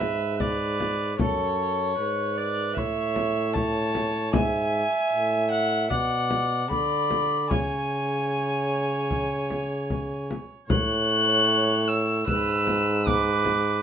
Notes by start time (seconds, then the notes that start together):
Already playing: G#2 B4 E5
0.01 frame drum
0.40 B4 D5, frame drum
0.80 frame drum
1.19 F#2 A4 C#5, frame drum
1.98 G#2 B4
2.37 D5
2.76 A2 C#5 E5, frame drum
3.16 frame drum
3.54 C#5 A5, frame drum
3.95 frame drum
4.33 G#2 E5 G#5, frame drum
5.12 A2
5.51 F#5
5.90 B2 D5 F#5, frame drum
6.31 frame drum
6.70 D3 D5 B5, frame drum
7.11 frame drum
7.50 C#3 C#5 G#5, frame drum
9.11 frame drum
9.51 frame drum
9.90 frame drum
10.31 frame drum
10.70 A2 C#5 F#6, frame drum
11.88 E6
12.27 G#2 B4 E6, frame drum
12.67 frame drum
13.07 B4 D6, frame drum
13.45 frame drum